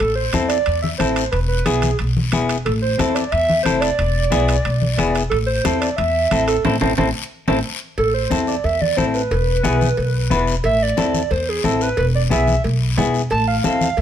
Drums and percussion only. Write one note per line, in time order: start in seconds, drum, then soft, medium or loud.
0.00 high conga soft
0.00 high timbale medium
0.00 long guiro medium
0.33 high conga medium
0.33 high timbale medium
0.33 short guiro medium
0.49 high timbale medium
0.49 short guiro medium
0.66 high conga soft
0.66 high timbale medium
0.66 long guiro medium
0.84 high conga medium
1.00 high conga medium
1.00 high timbale medium
1.00 short guiro medium
1.16 high timbale medium
1.16 short guiro medium
1.33 high conga soft
1.33 high timbale medium
1.33 long guiro medium
1.66 high conga medium
1.66 high timbale medium
1.66 short guiro medium
1.82 high conga medium
1.82 high timbale medium
1.82 short guiro medium
1.99 high conga soft
1.99 high timbale medium
1.99 long guiro medium
2.17 high conga medium
2.32 high conga medium
2.32 high timbale medium
2.32 short guiro medium
2.49 high timbale medium
2.49 short guiro medium
2.66 high conga soft
2.66 high timbale medium
2.66 long guiro medium
2.99 high conga medium
2.99 high timbale medium
2.99 short guiro medium
3.15 high timbale medium
3.15 short guiro medium
3.32 high conga soft
3.32 high timbale medium
3.32 long guiro medium
3.50 high conga medium
3.66 high conga medium
3.66 high timbale medium
3.66 short guiro medium
3.82 high timbale medium
3.82 short guiro medium
3.99 high conga soft
3.99 high timbale medium
3.99 long guiro medium
4.32 high conga medium
4.32 high timbale medium
4.32 short guiro medium
4.48 high timbale medium
4.48 short guiro medium
4.65 high conga soft
4.65 high timbale medium
4.65 long guiro medium
4.82 high conga medium
4.98 high conga medium
4.98 high timbale medium
4.98 short guiro medium
5.15 high timbale medium
5.15 short guiro medium
5.32 high conga soft
5.32 high timbale medium
5.32 long guiro medium
5.65 high conga medium
5.65 high timbale medium
5.65 short guiro medium
5.82 high timbale medium
5.82 short guiro medium
5.98 high conga soft
5.98 high timbale medium
5.98 long guiro medium
6.31 high conga medium
6.31 high timbale medium
6.31 short guiro medium
6.48 high timbale medium
6.48 short guiro medium
6.65 high conga loud
6.65 high timbale medium
6.65 long guiro medium
6.81 high conga medium
6.81 high timbale loud
6.81 long guiro medium
6.98 high conga medium
6.98 high timbale medium
6.98 long guiro loud
7.48 high conga medium
7.48 high timbale loud
7.48 long guiro medium
7.98 cowbell medium
7.98 high conga soft
7.98 long guiro medium
8.31 cowbell medium
8.31 high conga medium
8.31 short guiro medium
8.47 short guiro medium
8.64 cowbell medium
8.64 high conga soft
8.64 long guiro medium
8.82 high conga medium
8.97 cowbell medium
8.97 high conga medium
8.97 short guiro medium
9.14 short guiro medium
9.31 cowbell loud
9.31 high conga soft
9.31 long guiro medium
9.64 cowbell medium
9.64 high conga medium
9.64 short guiro medium
9.81 high conga medium
9.81 short guiro medium
9.97 cowbell medium
9.97 high conga soft
9.97 long guiro medium
10.31 cowbell medium
10.31 high conga medium
10.31 low conga medium
10.31 short guiro medium
10.47 short guiro medium
10.64 cowbell loud
10.64 high conga soft
10.64 long guiro medium
10.97 cowbell medium
10.97 high conga medium
10.97 short guiro medium
11.14 high conga medium
11.14 short guiro medium
11.31 cowbell medium
11.31 high conga soft
11.31 long guiro medium
11.64 cowbell medium
11.64 high conga medium
11.64 short guiro medium
11.81 short guiro medium
11.97 cowbell loud
11.97 high conga soft
11.97 long guiro medium
12.31 cowbell medium
12.31 high conga medium
12.31 short guiro medium
12.48 high conga medium
12.48 short guiro medium
12.64 cowbell medium
12.64 high conga soft
12.64 long guiro medium
12.98 cowbell medium
12.98 high conga medium
12.98 low conga medium
12.98 low timbale medium
12.98 short guiro medium
13.14 short guiro medium
13.30 cowbell loud
13.30 high conga soft
13.30 long guiro medium
13.64 cowbell medium
13.64 high conga medium
13.64 short guiro medium
13.81 high conga medium
13.81 short guiro medium
13.97 cowbell medium
13.97 high conga soft
13.97 long guiro medium